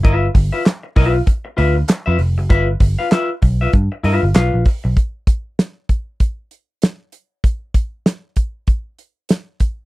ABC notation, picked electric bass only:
X:1
M:4/4
L:1/16
Q:"Swing 16ths" 1/4=97
K:Gmix
V:1 name="Picked electric bass" clef=bass
G,,,2 G,,, z3 B,,,2 z2 D,,2 z F,, F,,, ^F,,, | G,,,2 G,,, z3 B,,,2 G,, z G,, G,,, B,,, _B,,, z =B,,, | z16 | z16 |]